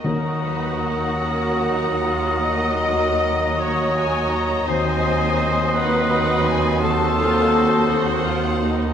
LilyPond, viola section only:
\new Staff \with { instrumentName = "Viola section" } { \time 12/8 \key ees \minor \tempo 4. = 55 << { bes'8 ces''8 bes'2 bes'4. ees''4.~ | ees''2. c''2. | } \\ { ees'4. des'8 ees'8 f'8 ges'8 ges'8 ges'2 | ees'4. ees'4. ges'8 f'8 ges'8 ges'8 f'8 ees'8 | } >> }